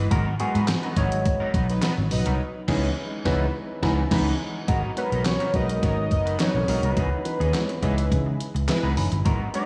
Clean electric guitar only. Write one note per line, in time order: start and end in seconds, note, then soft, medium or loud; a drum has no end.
0.11 0.33 F#3 medium
0.11 0.34 B3 medium
0.11 0.34 D#4 medium
0.11 0.34 A#4 loud
0.39 0.55 F#3 medium
0.39 0.55 B3 medium
0.39 0.54 D#4 medium
0.39 0.54 A#4 medium
0.54 0.67 F#3 medium
0.54 0.68 B3 medium
0.54 0.68 D#4 medium
0.54 0.69 B4 medium
0.83 0.95 F#3 medium
0.83 0.96 B3 medium
0.83 0.97 D#4 medium
0.83 0.98 B4 medium
0.97 1.19 F#3 medium
0.97 1.12 B3 medium
0.97 1.11 D#4 medium
0.97 1.11 A#4 medium
1.12 muted clean electric guitar stroke soft
1.25 muted clean electric guitar stroke soft
1.40 1.52 F#3 medium
1.40 1.53 B3 medium
1.40 1.54 D#4 medium
1.40 1.55 A#4 medium
1.54 1.72 F#3 medium
1.54 1.69 B3 medium
1.54 1.69 D#4 medium
1.54 1.69 B4 medium
1.69 muted clean electric guitar stroke medium
1.82 2.05 F#3 medium
1.82 1.98 B3 medium
1.82 1.97 D#4 medium
1.82 1.97 B4 loud
1.98 muted clean electric guitar stroke medium
2.11 muted clean electric guitar stroke soft
2.26 2.40 F#3 medium
2.26 2.40 B3 medium
2.26 2.40 D#4 medium
2.26 2.40 A#4 medium
2.68 2.89 E3 loud
2.68 2.89 B3 loud
2.68 2.88 D#4 loud
2.68 2.88 G#4 loud
3.25 3.45 E3 loud
3.25 3.45 B3 loud
3.25 3.46 D#4 medium
3.83 4.03 E3 loud
3.83 4.03 B3 medium
3.83 4.02 D#4 loud
4.11 4.32 E3 loud
4.11 4.31 B3 loud
4.11 4.31 D#4 loud
4.68 4.90 F#3 medium
4.68 4.91 B3 medium
4.68 4.91 D#4 loud
4.68 4.91 A#4 loud
4.97 5.12 F#3 medium
4.97 5.12 B3 medium
4.97 5.11 D#4 medium
4.97 5.10 A#4 medium
5.12 5.24 F#3 medium
5.12 5.25 B3 medium
5.12 5.25 D#4 medium
5.12 5.25 A#4 medium
5.40 5.52 F#3 medium
5.40 5.53 B3 medium
5.40 5.54 D#4 medium
5.40 5.55 A#4 medium
5.54 5.72 F#3 medium
5.54 5.69 B3 medium
5.54 5.69 D#4 medium
5.54 5.69 B4 medium
5.69 muted clean electric guitar stroke soft
5.82 6.05 F#3 medium
5.82 5.98 B3 medium
5.82 5.97 D#4 medium
5.82 5.97 A#4 medium
5.98 muted clean electric guitar stroke medium
6.11 muted clean electric guitar stroke soft
6.26 6.38 F#3 medium
6.26 6.39 B3 soft
6.26 6.39 D#4 soft
6.26 6.40 B4 medium
6.55 muted clean electric guitar stroke soft
6.68 6.84 F#3 loud
6.68 6.83 B3 loud
6.68 6.83 D#4 loud
6.68 6.82 A#4 loud
6.83 6.96 F#3 medium
6.83 6.96 B3 medium
6.83 6.97 D#4 medium
6.83 6.98 A#4 medium
6.96 7.19 E3 medium
6.96 7.12 B3 medium
6.96 7.11 D#4 medium
6.96 7.11 G#4 loud
7.12 muted clean electric guitar stroke medium
7.25 muted clean electric guitar stroke soft
7.40 7.58 E3 medium
7.40 7.58 B3 medium
7.40 7.57 D#4 medium
7.40 7.57 G#4 medium
7.69 muted clean electric guitar stroke soft
7.82 8.05 E3 medium
7.82 7.98 B3 medium
7.82 7.97 D#4 medium
7.82 7.96 G#4 medium
7.98 muted clean electric guitar stroke medium
8.11 muted clean electric guitar stroke soft
8.26 muted clean electric guitar stroke soft
8.55 muted clean electric guitar stroke soft
8.68 muted clean electric guitar stroke medium
8.83 8.96 E3 medium
8.83 8.96 B3 medium
8.83 8.96 D#4 medium
8.83 8.97 G#4 medium
8.97 muted clean electric guitar stroke soft
9.12 muted clean electric guitar stroke soft
9.25 9.48 F#3 medium
9.25 9.48 B3 medium
9.25 9.48 D#4 medium
9.25 9.48 A#4 medium
9.54 9.66 F#3 medium
9.54 9.66 B3 medium
9.54 9.66 D#4 medium
9.54 9.66 A#4 medium